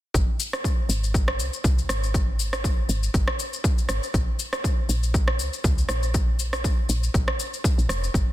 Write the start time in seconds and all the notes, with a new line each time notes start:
0.14 G#1, kick, shaker
0.40 shaker
0.53 cross-stick, shaker
0.64 kick, shaker
0.89 G#1, shaker
1.04 shaker
1.14 kick, shaker
1.28 cross-stick
1.39 C2, shaker
1.53 shaker
1.64 C2, kick, shaker
1.78 shaker
1.89 G#1, cross-stick, shaker
2.03 shaker
2.14 kick, shaker
2.39 shaker
2.53 cross-stick, shaker
2.64 kick, shaker
2.89 G#1, shaker
3.03 shaker
3.14 G#1, kick, shaker
3.28 cross-stick
3.39 shaker
3.53 shaker
3.64 kick, shaker
3.78 shaker
3.89 G#1, cross-stick, shaker
4.03 shaker
4.14 A#1, kick, shaker
4.39 shaker
4.53 cross-stick, shaker
4.64 kick, shaker
4.89 A#1, shaker
5.03 shaker
5.14 kick, shaker
5.28 cross-stick
5.39 C#2, shaker
5.53 shaker
5.64 C#2, kick, shaker
5.78 shaker
5.89 A#1, cross-stick, shaker
6.03 shaker
6.14 kick, shaker
6.39 shaker
6.53 cross-stick, shaker
6.64 kick, shaker
6.89 A#1, shaker
7.03 shaker
7.14 A#1, kick, shaker
7.28 cross-stick
7.40 shaker
7.54 shaker
7.64 kick, shaker
7.78 A#1, shaker
7.89 F1, cross-stick, shaker
8.04 shaker
8.14 G#1, kick, shaker